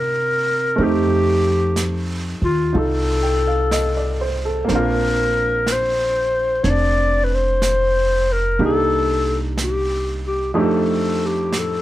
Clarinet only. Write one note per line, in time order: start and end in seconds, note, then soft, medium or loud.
0.00 0.85 A#4 medium
0.83 2.08 G4 medium
2.44 2.80 F4 medium
2.78 4.38 A4 medium
4.75 5.74 A#4 medium
5.72 6.65 C5 medium
6.64 6.71 C#5 medium
6.69 7.25 D5 medium
7.24 7.36 B4 medium
7.34 8.34 C5 medium
8.32 8.62 A#4 medium
8.65 9.38 A4 medium
9.62 10.21 G4 medium
10.27 10.51 G4 medium
10.54 10.62 G#4 medium
10.61 11.27 A4 medium
11.26 11.60 G4 medium
11.58 11.82 A4 medium